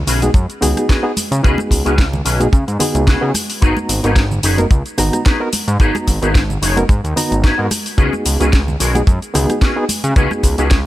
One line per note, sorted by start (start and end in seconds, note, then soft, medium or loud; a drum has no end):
0.07 0.29 B1 medium
0.07 0.22 C#4 medium
0.07 0.22 F#4 medium
0.07 0.22 G#4 medium
0.07 0.23 B4 medium
0.07 open hi-hat loud
0.07 shaker medium
0.22 0.29 B3 medium
0.22 0.29 D#4 medium
0.22 0.30 F#4 medium
0.22 0.30 G#4 medium
0.22 closed hi-hat medium
0.22 high conga loud
0.22 shaker soft
0.34 0.46 F#2 loud
0.34 muted clean electric guitar stroke soft
0.34 kick loud
0.34 closed hi-hat medium
0.34 shaker soft
0.50 closed hi-hat soft
0.50 shaker soft
0.61 0.74 C#2 medium
0.61 1.00 B3 medium
0.61 1.00 D#4 medium
0.61 1.00 F#4 medium
0.61 1.01 G#4 medium
0.61 muted clean electric guitar stroke loud
0.61 cross-stick medium
0.61 open hi-hat loud
0.61 low conga medium
0.61 shaker medium
0.76 muted clean electric guitar stroke soft
0.76 cross-stick medium
0.76 closed hi-hat medium
0.76 high conga medium
0.76 shaker soft
0.88 1.04 C#4 medium
0.88 1.04 F#4 medium
0.88 1.04 G#4 medium
0.88 1.04 B4 medium
0.88 kick loud
0.88 snare loud
0.88 closed hi-hat medium
0.88 shaker soft
1.03 1.11 B3 loud
1.03 1.11 D#4 medium
1.03 1.11 F#4 medium
1.03 1.11 G#4 loud
1.16 muted clean electric guitar stroke soft
1.16 open hi-hat loud
1.16 high conga loud
1.16 shaker medium
1.31 1.41 C#3 loud
1.31 closed hi-hat medium
1.31 shaker soft
1.42 1.56 C#2 loud
1.42 1.82 B3 medium
1.42 1.58 C#4 loud
1.42 1.82 D#4 medium
1.42 1.58 F#4 loud
1.42 1.82 F#4 medium
1.42 1.58 G#4 loud
1.42 1.83 G#4 medium
1.42 1.59 B4 loud
1.42 kick loud
1.42 closed hi-hat medium
1.42 shaker soft
1.58 cross-stick medium
1.58 high conga loud
1.58 shaker soft
1.70 1.83 C#2 medium
1.70 muted clean electric guitar stroke soft
1.70 kick medium
1.70 open hi-hat loud
1.70 shaker medium
1.85 2.22 C#2 loud
1.85 1.93 B3 medium
1.85 2.05 C#4 medium
1.85 1.93 D#4 medium
1.85 2.06 F#4 medium
1.85 1.93 F#4 medium
1.85 2.06 G#4 medium
1.85 1.93 G#4 medium
1.85 2.06 B4 loud
1.85 closed hi-hat medium
1.85 shaker soft
1.98 kick loud
1.98 snare loud
1.98 closed hi-hat medium
1.98 high conga medium
1.98 shaker soft
2.13 low conga medium
2.13 shaker soft
2.25 2.48 B1 medium
2.25 2.40 C#4 medium
2.25 2.40 F#4 medium
2.25 2.40 G#4 medium
2.25 2.41 B4 loud
2.25 open hi-hat loud
2.25 shaker medium
2.40 2.47 B3 medium
2.40 2.48 D#4 medium
2.40 2.48 F#4 medium
2.40 2.48 G#4 medium
2.40 closed hi-hat medium
2.40 high conga medium
2.40 shaker soft
2.52 2.65 C#3 medium
2.52 muted clean electric guitar stroke soft
2.52 kick loud
2.52 closed hi-hat medium
2.52 shaker soft
2.68 2.78 G#2 loud
2.68 closed hi-hat soft
2.68 shaker soft
2.79 3.18 B3 medium
2.79 3.18 D#4 medium
2.79 3.19 F#4 medium
2.79 3.19 G#4 loud
2.79 muted clean electric guitar stroke loud
2.79 open hi-hat loud
2.79 low conga medium
2.79 shaker medium
2.94 3.16 C#2 medium
2.94 muted clean electric guitar stroke soft
2.94 closed hi-hat medium
2.94 high conga medium
2.94 shaker soft
3.07 3.22 C#4 medium
3.07 3.22 F#4 medium
3.07 3.22 G#4 medium
3.07 3.23 B4 medium
3.07 kick loud
3.07 snare loud
3.07 closed hi-hat medium
3.07 shaker soft
3.21 3.32 C#3 loud
3.21 3.29 B3 loud
3.21 3.29 D#4 medium
3.21 3.29 F#4 medium
3.21 3.30 G#4 loud
3.34 muted clean electric guitar stroke soft
3.34 cross-stick medium
3.34 open hi-hat loud
3.34 high conga loud
3.34 shaker medium
3.50 open hi-hat medium
3.50 shaker soft
3.61 3.74 G#1 medium
3.61 4.00 B3 medium
3.61 3.76 D#4 loud
3.61 4.00 D#4 medium
3.61 3.77 F#4 loud
3.61 4.01 F#4 medium
3.61 3.77 G#4 loud
3.61 3.77 B4 loud
3.61 4.01 A#5 medium
3.61 kick loud
3.61 closed hi-hat medium
3.61 shaker soft
3.77 high conga loud
3.77 shaker soft
3.89 4.01 G#1 medium
3.89 muted clean electric guitar stroke soft
3.89 open hi-hat loud
3.89 shaker medium
4.03 4.40 G#1 loud
4.03 4.11 B3 medium
4.03 4.11 D#4 medium
4.03 4.24 D#4 medium
4.03 4.11 F#4 medium
4.03 4.24 F#4 medium
4.03 4.24 G#4 medium
4.03 4.11 A#4 medium
4.03 4.24 B4 loud
4.03 closed hi-hat medium
4.03 shaker soft
4.16 kick loud
4.16 snare loud
4.16 closed hi-hat medium
4.16 high conga medium
4.16 shaker soft
4.31 low conga medium
4.31 shaker soft
4.43 4.66 F#1 medium
4.43 4.58 D#4 medium
4.43 4.59 F#4 medium
4.43 4.59 G#4 medium
4.43 4.59 B4 medium
4.43 open hi-hat loud
4.43 shaker medium
4.58 4.65 B3 medium
4.58 4.66 D#4 medium
4.58 4.66 F#4 medium
4.58 4.66 A#4 medium
4.58 closed hi-hat medium
4.58 high conga medium
4.58 shaker soft
4.71 4.83 C#2 loud
4.71 muted clean electric guitar stroke soft
4.71 kick loud
4.71 closed hi-hat medium
4.71 shaker soft
4.86 closed hi-hat soft
4.86 shaker soft
4.98 5.10 G#1 medium
4.98 5.37 B3 medium
4.98 5.37 D#4 medium
4.98 5.37 F#4 medium
4.98 5.37 A#5 loud
4.98 muted clean electric guitar stroke loud
4.98 cross-stick medium
4.98 open hi-hat loud
4.98 low conga medium
4.98 shaker medium
5.13 muted clean electric guitar stroke soft
5.13 cross-stick medium
5.13 closed hi-hat medium
5.13 high conga medium
5.13 shaker soft
5.25 5.40 D#4 medium
5.25 5.41 F#4 medium
5.25 5.41 G#4 medium
5.25 5.41 B4 medium
5.25 kick loud
5.25 snare loud
5.25 closed hi-hat medium
5.25 shaker soft
5.40 5.48 B3 loud
5.40 5.48 D#4 medium
5.40 5.48 F#4 medium
5.40 5.48 A#4 loud
5.53 muted clean electric guitar stroke soft
5.53 open hi-hat loud
5.53 high conga medium
5.53 shaker medium
5.68 5.78 G#2 loud
5.68 closed hi-hat medium
5.68 shaker soft
5.80 5.92 G#1 medium
5.80 6.18 B3 medium
5.80 5.95 D#4 loud
5.80 6.19 D#4 medium
5.80 5.95 F#4 medium
5.80 6.19 F#4 medium
5.80 5.95 G#4 loud
5.80 5.95 B4 loud
5.80 6.19 A#5 medium
5.80 kick loud
5.80 closed hi-hat medium
5.80 shaker soft
5.95 cross-stick medium
5.95 closed hi-hat soft
5.95 high conga loud
5.95 shaker soft
6.07 6.19 G#1 medium
6.07 muted clean electric guitar stroke soft
6.07 kick medium
6.07 open hi-hat loud
6.07 shaker medium
6.22 6.58 G#1 loud
6.22 6.29 B3 medium
6.22 6.42 D#4 medium
6.22 6.29 D#4 medium
6.22 6.42 F#4 medium
6.22 6.30 F#4 medium
6.22 6.42 G#4 medium
6.22 6.30 A#4 medium
6.22 6.42 B4 medium
6.22 closed hi-hat soft
6.22 shaker soft
6.35 kick loud
6.35 snare loud
6.35 closed hi-hat medium
6.35 high conga medium
6.35 shaker soft
6.50 low conga medium
6.50 shaker soft
6.62 6.84 F#1 medium
6.62 6.77 D#4 medium
6.62 6.77 F#4 medium
6.62 6.77 G#4 medium
6.62 6.77 C#5 loud
6.62 open hi-hat loud
6.62 shaker medium
6.76 6.84 B3 medium
6.76 6.84 D#4 medium
6.76 6.84 F#4 medium
6.76 6.84 A#4 medium
6.76 closed hi-hat soft
6.76 high conga loud
6.76 shaker soft
6.89 7.01 G#2 loud
6.89 muted clean electric guitar stroke soft
6.89 kick loud
6.89 closed hi-hat medium
6.89 shaker soft
7.04 7.14 D#2 loud
7.04 closed hi-hat soft
7.04 shaker soft
7.16 7.55 B3 medium
7.16 7.55 D#4 medium
7.16 7.55 F#4 medium
7.16 7.55 A#5 loud
7.16 muted clean electric guitar stroke loud
7.16 open hi-hat loud
7.16 low conga medium
7.16 shaker medium
7.31 7.53 G#1 medium
7.31 muted clean electric guitar stroke soft
7.31 closed hi-hat soft
7.31 high conga medium
7.31 shaker soft
7.43 7.58 D#4 medium
7.43 7.58 F#4 medium
7.43 7.59 G#4 medium
7.43 7.59 B4 medium
7.43 kick loud
7.43 snare loud
7.43 closed hi-hat medium
7.43 shaker soft
7.58 7.69 G#2 loud
7.58 7.66 B3 loud
7.58 7.66 D#4 medium
7.58 7.66 F#4 medium
7.58 7.66 A#4 loud
7.70 muted clean electric guitar stroke soft
7.70 cross-stick medium
7.70 open hi-hat loud
7.70 high conga loud
7.70 shaker medium
7.86 open hi-hat medium
7.86 shaker soft
7.97 8.10 C#2 loud
7.97 8.37 B3 medium
7.97 8.13 C#4 loud
7.97 8.37 D#4 medium
7.97 8.13 F#4 loud
7.97 8.37 F#4 medium
7.97 8.13 G#4 loud
7.97 8.37 G#4 medium
7.97 8.13 B4 loud
7.97 kick loud
7.97 closed hi-hat medium
7.97 shaker soft
8.13 high conga medium
8.13 shaker soft
8.25 8.37 C#2 medium
8.25 muted clean electric guitar stroke soft
8.25 open hi-hat loud
8.25 shaker medium
8.40 8.76 C#2 loud
8.40 8.48 B3 medium
8.40 8.60 C#4 medium
8.40 8.48 D#4 medium
8.40 8.60 F#4 medium
8.40 8.48 F#4 medium
8.40 8.60 G#4 medium
8.40 8.48 G#4 medium
8.40 8.61 B4 loud
8.40 closed hi-hat medium
8.40 shaker soft
8.53 kick loud
8.53 snare loud
8.53 closed hi-hat medium
8.53 high conga medium
8.53 shaker soft
8.68 low conga medium
8.68 shaker soft
8.79 9.02 B1 medium
8.79 8.95 C#4 medium
8.79 8.95 F#4 medium
8.79 8.95 G#4 medium
8.79 8.95 A#4 loud
8.79 open hi-hat loud
8.79 shaker medium
8.94 9.02 B3 medium
8.94 9.02 D#4 medium
8.94 9.02 F#4 medium
8.94 9.03 G#4 medium
8.94 closed hi-hat medium
8.94 high conga loud
8.94 shaker soft
9.07 9.19 F#2 loud
9.07 muted clean electric guitar stroke soft
9.07 kick loud
9.07 closed hi-hat medium
9.07 shaker soft
9.22 closed hi-hat soft
9.22 shaker soft
9.34 9.46 C#2 medium
9.34 9.73 B3 medium
9.34 9.73 D#4 medium
9.34 9.73 F#4 medium
9.34 9.73 G#4 loud
9.34 muted clean electric guitar stroke loud
9.34 cross-stick medium
9.34 open hi-hat loud
9.34 low conga medium
9.34 shaker medium
9.49 muted clean electric guitar stroke soft
9.49 cross-stick medium
9.49 closed hi-hat medium
9.49 high conga medium
9.49 shaker soft
9.61 9.76 C#4 medium
9.61 9.77 F#4 medium
9.61 9.77 G#4 medium
9.61 9.77 B4 medium
9.61 kick loud
9.61 snare loud
9.61 closed hi-hat medium
9.61 shaker soft
9.76 9.84 B3 loud
9.76 9.84 D#4 medium
9.76 9.84 F#4 medium
9.76 9.84 G#4 loud
9.89 muted clean electric guitar stroke soft
9.89 open hi-hat loud
9.89 high conga medium
9.89 shaker medium
10.04 10.14 C#3 loud
10.04 closed hi-hat medium
10.04 shaker soft
10.15 10.28 C#2 loud
10.15 10.55 B3 medium
10.15 10.31 C#4 loud
10.15 10.55 D#4 medium
10.15 10.31 F#4 loud
10.15 10.55 F#4 medium
10.15 10.31 G#4 loud
10.15 10.55 G#4 medium
10.15 10.31 B4 loud
10.15 kick loud
10.15 closed hi-hat medium
10.15 shaker soft
10.31 cross-stick medium
10.31 high conga medium
10.31 shaker soft
10.43 10.55 C#2 medium
10.43 muted clean electric guitar stroke soft
10.43 kick medium
10.43 open hi-hat loud
10.43 shaker medium
10.58 10.86 C#2 loud
10.58 10.66 B3 medium
10.58 10.78 C#4 medium
10.58 10.66 D#4 medium
10.58 10.78 F#4 medium
10.58 10.66 F#4 medium
10.58 10.78 G#4 medium
10.58 10.66 G#4 medium
10.58 10.79 B4 loud
10.58 closed hi-hat medium
10.58 shaker soft
10.71 kick loud
10.71 snare loud
10.71 closed hi-hat medium
10.71 high conga medium
10.71 shaker soft